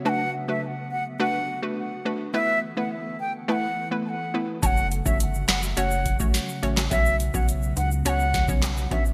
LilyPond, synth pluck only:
\new Staff \with { instrumentName = "Synth pluck" } { \time 4/4 \key fis \minor \tempo 4 = 105 <a d' fis' b'>16 r8 <a d' fis' b'>16 r4 <a d' fis' b'>16 r8 <a d' fis' b'>8. <a d' fis' b'>8 | <a b e' b'>16 r8 <a b e' b'>16 r4 <a b e' b'>16 r8 <a b e' b'>8. <a b e' b'>8 | <a cis' fis' cis''>16 r8 <a cis' fis' cis''>16 r4 <a cis' fis' cis''>16 r8 <a cis' fis' cis''>8. <a cis' fis' cis''>8 | <b cis' fis' cis''>16 r8 <b cis' fis' cis''>16 r4 <b cis' fis' cis''>16 r8 <b cis' fis' cis''>8. <b cis' fis' cis''>8 | }